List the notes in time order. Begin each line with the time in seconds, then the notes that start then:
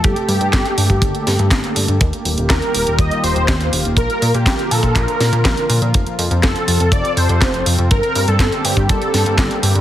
Already playing: A3 A4
0.04 G1 D3 A#3 G4, kick, closed hi-hat
0.16 closed hi-hat
0.29 G2, open hi-hat
0.41 G2, closed hi-hat
0.53 G1, kick, snare, clap, closed hi-hat
0.65 closed hi-hat
0.78 G2, open hi-hat
0.90 G2, kick, closed hi-hat
1.02 G1, kick, closed hi-hat
1.15 closed hi-hat
1.27 G2, snare, open hi-hat
1.39 G2, closed hi-hat
1.51 G1, kick, snare, clap, closed hi-hat
1.64 closed hi-hat
1.76 G2, open hi-hat
1.88 G2, closed hi-hat
2.01 D#2 D#3 G3 F4 G4, kick, closed hi-hat
2.13 closed hi-hat
2.25 D#1, open hi-hat
2.38 D#1, closed hi-hat
2.50 D#2 A#4, kick, snare, clap, closed hi-hat
2.62 closed hi-hat
2.74 D#1, open hi-hat
2.87 D#1, closed hi-hat
2.99 D#2 D#5, kick, closed hi-hat
3.11 closed hi-hat
3.24 D#1 C5, open hi-hat
3.36 D#1, closed hi-hat
3.48 D#2, kick, snare, clap, closed hi-hat
3.61 closed hi-hat
3.73 D#1, open hi-hat
3.85 D#1, closed hi-hat
3.97 A#1 D3 F3 A#4, kick, closed hi-hat
4.10 closed hi-hat
4.22 A#2, open hi-hat
4.34 A#2 G4, closed hi-hat
4.46 A#1, kick, snare, clap, closed hi-hat
4.59 closed hi-hat
4.71 A#2 A4, open hi-hat
4.83 A#2, kick, closed hi-hat
4.96 A#1 A#4, kick, clap, closed hi-hat
5.08 closed hi-hat
5.20 A#2, snare, open hi-hat
5.33 A#2, closed hi-hat
5.45 A#1, kick, snare, clap, closed hi-hat
5.57 closed hi-hat
5.69 A#2, open hi-hat
5.82 A#2, closed hi-hat
5.94 F1 C3 C4 A4, kick, closed hi-hat
6.07 closed hi-hat
6.19 F2, open hi-hat
6.31 F2, closed hi-hat
6.43 F1 A4, kick, snare, clap, closed hi-hat
6.56 closed hi-hat
6.68 F2, open hi-hat
6.80 F2, closed hi-hat
6.92 F1 D5, kick, closed hi-hat
7.05 closed hi-hat
7.17 F2 C5, open hi-hat
7.29 F2, closed hi-hat
7.41 F1, kick, snare, clap, closed hi-hat
7.54 closed hi-hat
7.66 F2, open hi-hat
7.79 F2, closed hi-hat
7.91 G1 D3 G3 A#3 G4 A#4, kick, closed hi-hat
8.03 closed hi-hat
8.15 G2, open hi-hat
8.28 G2 A4, closed hi-hat
8.39 G1, kick, snare, clap, closed hi-hat
8.52 closed hi-hat
8.64 G2 G4, open hi-hat
8.77 G2, kick, closed hi-hat
8.89 G1 A4, kick, closed hi-hat
9.02 closed hi-hat
9.14 G2, snare, open hi-hat
9.26 G2, closed hi-hat
9.38 G1, kick, snare, clap, closed hi-hat
9.51 closed hi-hat
9.63 G2, open hi-hat
9.75 G2, closed hi-hat